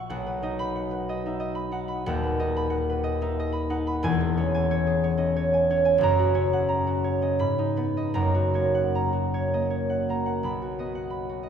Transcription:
Already playing: A#1 C#5 E5 C#6
0.10 B1 F#5
0.26 B4
0.43 D#4 D#5
0.59 B5
0.76 F#5
0.91 B4
1.09 D#5
1.26 D#4 E5
1.40 D#5
1.55 B5
1.72 D#4 F#5
1.88 B5
2.06 D#1 D#2 F#5
2.23 B4
2.40 D#4 D#5
2.56 B5
2.70 F#5
2.90 B4
3.04 D#5
3.21 D#4 E5
3.40 D#5
3.52 B5
3.70 D#4 F#5
3.87 B5
4.03 E1 E2 G#5
4.21 G#4
4.37 C#4 C#5
4.54 G#5
4.71 C#5
4.87 G#4
5.04 C#5
5.17 C#4 D#5
5.36 C#5
5.54 G#5
5.70 C#4 C#5
5.85 G#5
5.98 F#1 F#2
6.03 A#5
6.19 F#4
6.35 C#4 C#5
6.53 F#5
6.69 A#5
6.87 F#4
7.04 C#5
7.22 C#4 D#5
7.39 G#2 B5
7.58 D#4
7.77 B3 B4
7.97 D#5
8.14 F#1 F#2 A#5
8.34 F#4
8.54 A#3 C#5
8.75 F#5
8.95 A#5
9.13 F#4
9.34 C#5
9.54 A#3 D#5
9.70 C#5
9.90 F#5
10.09 A#3 A#5
10.26 F#5
10.43 B1 B5
10.62 F#4
10.79 B3 D#5
10.95 F#5
11.10 B5
11.29 F#4
11.43 D#5

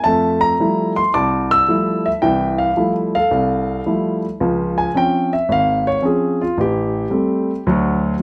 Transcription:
0.03 F2 A3 E5 A5
0.41 A#5
0.60 F3 G3 A3 E4
0.96 C6
1.14 C2 A5 D6
1.51 E6
1.68 F3 G3 A3 E4
2.06 E5
2.22 C2 E3 E5 G5
2.58 F5
2.76 F3 G3 A3 E4
3.15 A4 F5
3.31 C2
3.86 F3 G3 A3 E4
4.40 C#2 F3
4.78 G#5
4.95 F3 C4 C#4 G5
5.33 E5
5.49 G#1 F5
5.87 C#5
6.02 F3 C4 C#4 G#4
6.41 F4
6.58 A1 G4
7.10 G3 A3 C4
7.67 D2 F#3

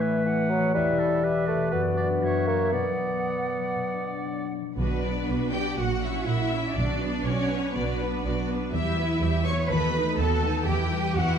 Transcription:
Already playing: A2 E3 A3 E4 E5
0.01 B4
0.09 D5
0.25 E3 E5 F#5
0.42 D5
0.50 F#3
0.59 E3
0.74 E2 G3 E4 B4 E5
0.91 B2
0.99 A4
1.23 G4 B4 E5
1.46 A3 D5
1.55 B2
1.71 F#2 B3 F#4 B4 D5
1.88 D4
1.97 D5
2.05 F#4
2.21 F#2 F#4 C#5 E5
2.47 A#3 C#5
2.55 F#4 A#4
2.71 B2 B3 D5 F#5
2.90 F#3
3.07 B4
3.58 F#3
3.75 B2
3.93 D4
4.10 B4
4.27 C#5
4.44 B4
4.62 F#3
4.77 B1 B2 B3 D4 F#4 B4
4.95 D4
5.03 B3 D4 D5
5.29 B1 D4 F#4 B4 D5
5.45 F#5
5.52 B3 D4 G4 D5 G5
5.77 A#1 A#2 A#3 F#4 F#5
5.94 E4
6.03 C#4 E4 E5
6.11 C#5
6.26 A#1 A#3 E4 F#4 E5 F#5
6.52 C#4 E4 E5
6.61 E5
6.76 B1 B2 D4 F#4 D5
6.94 B3
7.01 B3 D4 B4
7.10 B4
7.25 B1 C#4 D4 F#4 C#5 D5
7.43 F#5
7.51 B3 D4 B4
7.59 B4
7.74 B1 F#3 B3 D4 F#4 B4 D5
7.92 B3
8.01 B3 D4 B4
8.24 B1 D4 F#4 D5
8.41 F#5
8.50 B3 D4 B4
8.56 B4
8.72 E2 E3 G3 E4 G4 E5
8.89 B3
8.98 B3 E4 B4
9.05 B4
9.21 E2 G3 G4 E5
9.37 G5
9.45 B3 E4 B4 C#5 C#6
9.53 B4
9.69 D#2 D#3 B3 F#4 A4 B4 B5
9.86 A3
9.95 A3 D#4 B4
10.18 D#2 B3 F#4 A4 A5
10.35 F#5
10.43 A3 D#4 B4
10.66 E2 E3 E4 G4 G5
10.84 E4
10.91 G3 G4 B4
10.99 G4
11.15 E2 E3 E4 F#4 G4 E5 F#5
11.32 B5

